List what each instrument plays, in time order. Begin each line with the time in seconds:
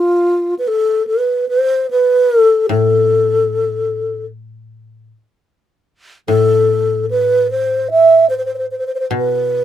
Already playing: alto flute F4
0.59 alto flute B4
0.68 alto flute A4
1.07 alto flute B4
1.49 alto flute C5
1.91 alto flute B4
2.40 alto flute A4
2.69 koto A2, alto flute A4
6.28 koto A2, alto flute A4
7.11 alto flute B4
7.51 alto flute C5
7.91 alto flute E5
8.30 alto flute C5
8.38 alto flute C5
8.45 alto flute C5
8.54 alto flute C5
8.71 alto flute C5
8.79 alto flute C5
8.87 alto flute C5
8.95 alto flute C5
9.00 alto flute C5
9.11 koto B2
9.16 alto flute B4